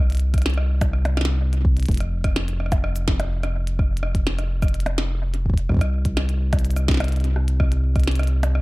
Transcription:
0.00 1.86 C2 medium
0.10 closed hi-hat soft
0.12 closed hi-hat soft
0.15 closed hi-hat soft
0.17 closed hi-hat soft
0.20 closed hi-hat soft
0.34 kick medium
0.34 cross-stick soft
0.34 closed hi-hat medium
0.38 cross-stick soft
0.38 closed hi-hat medium
0.42 cross-stick soft
0.42 snare loud
0.42 closed hi-hat soft
0.46 closed hi-hat soft
0.50 closed hi-hat soft
0.54 cross-stick medium
0.54 closed hi-hat soft
0.81 kick loud
0.81 closed hi-hat medium
0.81 percussion blips medium
0.81 cabasa medium
0.93 cross-stick medium
1.05 closed hi-hat soft
1.05 percussion blips medium
1.17 cross-stick medium
1.17 snare medium
1.21 snare medium
1.25 snare loud
1.53 closed hi-hat soft
1.65 kick loud
1.77 closed hi-hat soft
1.80 closed hi-hat soft
1.83 closed hi-hat soft
1.86 closed hi-hat soft
1.89 5.67 F1 medium
1.89 kick loud
1.89 closed hi-hat soft
1.91 closed hi-hat soft
1.94 closed hi-hat medium
1.97 cross-stick medium
1.97 closed hi-hat medium
2.00 closed hi-hat medium
2.24 kick medium
2.24 cross-stick medium
2.24 closed hi-hat medium
2.36 snare loud
2.48 closed hi-hat soft
2.60 cross-stick medium
2.66 cross-stick soft
2.72 kick loud
2.72 cross-stick soft
2.72 closed hi-hat medium
2.72 percussion blips medium
2.72 cabasa medium
2.78 cross-stick soft
2.84 cross-stick medium
2.96 closed hi-hat soft
2.96 cabasa medium
3.08 kick loud
3.08 snare loud
3.20 cross-stick medium
3.20 closed hi-hat medium
3.20 percussion blips medium
3.43 cross-stick medium
3.43 closed hi-hat soft
3.67 closed hi-hat medium
3.79 kick loud
3.79 cross-stick medium
3.97 closed hi-hat soft
4.03 cross-stick medium
4.15 kick medium
4.15 closed hi-hat medium
4.27 snare loud
4.39 cross-stick medium
4.39 closed hi-hat soft
4.62 kick loud
4.62 cross-stick medium
4.62 closed hi-hat soft
4.62 cabasa medium
4.68 closed hi-hat soft
4.74 closed hi-hat soft
4.80 closed hi-hat medium
4.86 closed hi-hat soft
4.86 percussion blips loud
4.98 snare loud
5.34 closed hi-hat soft
5.46 kick medium
5.50 kick medium
5.54 kick medium
5.54 closed hi-hat medium
5.69 8.62 C2 medium
5.69 kick soft
5.69 cross-stick medium
5.72 kick medium
5.74 kick medium
5.77 kick medium
5.79 kick medium
5.79 cross-stick medium
5.79 closed hi-hat medium
6.05 kick medium
6.05 closed hi-hat medium
6.17 cross-stick medium
6.17 snare loud
6.29 closed hi-hat medium
6.53 kick loud
6.53 closed hi-hat medium
6.53 percussion blips medium
6.53 cabasa soft
6.59 closed hi-hat soft
6.59 cabasa soft
6.65 closed hi-hat soft
6.65 cabasa soft
6.71 closed hi-hat soft
6.71 cabasa medium
6.76 cross-stick medium
6.76 closed hi-hat soft
6.76 cabasa medium
6.88 kick loud
6.88 snare loud
6.91 snare medium
6.94 snare medium
6.97 cross-stick medium
6.97 snare medium
6.97 closed hi-hat medium
6.97 percussion blips loud
7.04 closed hi-hat medium
7.08 closed hi-hat soft
7.12 closed hi-hat soft
7.16 closed hi-hat soft
7.20 closed hi-hat soft
7.24 closed hi-hat soft
7.36 cross-stick medium
7.48 closed hi-hat medium
7.60 kick loud
7.60 cross-stick medium
7.72 closed hi-hat medium
7.96 kick medium
7.96 cross-stick medium
7.96 closed hi-hat soft
8.00 closed hi-hat soft
8.04 snare loud
8.04 closed hi-hat soft
8.07 closed hi-hat soft
8.11 closed hi-hat medium
8.15 cross-stick medium
8.15 closed hi-hat medium
8.19 closed hi-hat soft
8.23 closed hi-hat soft
8.27 closed hi-hat soft
8.43 closed hi-hat medium
8.43 percussion blips medium
8.43 cabasa medium
8.55 cross-stick medium

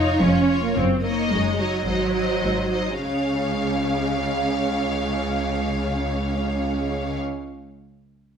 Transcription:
0.00 0.14 F1 medium
0.00 0.14 F2 medium
0.00 0.22 D#4 medium
0.00 0.48 F4 soft
0.00 0.47 C#5 soft
0.00 0.48 C#5 soft
0.22 0.68 F1 medium
0.22 0.68 F2 medium
0.22 0.62 C#4 medium
0.49 0.76 F4 soft
0.49 0.76 C#5 soft
0.63 0.76 A#3 soft
0.76 1.22 F#1 medium
0.76 1.22 F#2 medium
0.76 1.03 C4 medium
1.03 1.30 A#3 medium
1.03 1.57 D#4 soft
1.03 1.57 C#5 soft
1.03 1.58 D#5 soft
1.31 1.77 F#1 soft
1.31 1.77 F#2 soft
1.31 1.58 G#3 medium
1.58 3.01 F#3 medium
1.58 1.86 D#4 soft
1.58 1.86 C#5 soft
1.58 1.86 D#5 soft
1.86 2.34 G#1 medium
1.86 2.34 G#2 soft
1.86 2.14 D#4 soft
1.86 2.14 C5 soft
1.86 2.14 D#5 soft
2.15 2.71 D#4 soft
2.15 2.71 C5 soft
2.15 2.71 D#5 soft
2.43 2.92 G#1 soft
2.43 2.92 G#2 soft
2.72 3.00 D#4 soft
2.72 3.00 C5 soft
2.72 3.01 D#5 soft
3.01 7.17 C#2 soft
3.01 7.18 C#2 soft
3.01 7.17 C#3 soft
3.01 7.18 C#4 soft
3.01 7.18 C#5 soft
3.01 7.18 F5 soft

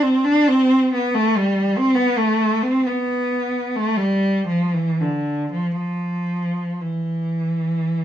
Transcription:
0.02 0.23 C4 medium
0.24 0.46 D4 medium
0.48 0.91 C4 medium
0.94 1.13 B3 medium
1.14 1.33 A3 medium
1.37 1.77 G3 medium
1.78 1.98 C4 medium
1.95 2.18 B3 medium
2.18 2.62 A3 medium
2.62 2.85 C4 medium
2.87 3.78 B3 medium
3.76 4.00 A3 medium
3.97 4.48 G3 medium
4.48 4.73 F3 medium
4.74 4.99 E3 medium
5.01 5.51 D3 medium
5.52 5.75 F3 medium
5.76 6.80 F3 medium
6.81 8.04 E3 soft

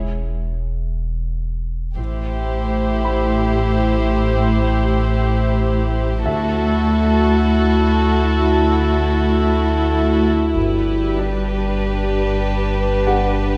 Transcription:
0.00 1.98 E1 soft
1.97 2.66 A1 soft
1.97 6.28 A1 medium
1.97 6.23 A2 soft
1.97 6.23 E4 soft
1.97 6.23 G4 soft
1.97 6.22 C5 soft
1.97 6.23 C5 soft
1.97 6.23 E5 soft
3.05 5.15 B5 soft
6.26 6.94 D2 soft
6.26 10.57 D2 medium
6.26 10.31 D2 soft
6.26 11.23 E4 soft
6.26 10.55 F#4 soft
6.26 10.31 F#4 soft
6.26 10.31 A4 soft
6.26 10.55 A4 soft
6.26 8.37 E5 soft
6.26 10.51 E5 soft
10.55 13.57 G1 medium
10.55 11.23 G1 soft
10.55 13.57 G2 soft
10.55 13.57 G4 soft
10.55 13.57 B4 soft
10.55 13.57 D5 soft
11.28 13.57 D4 soft
13.07 13.57 G4 soft
13.07 13.57 F#5 soft

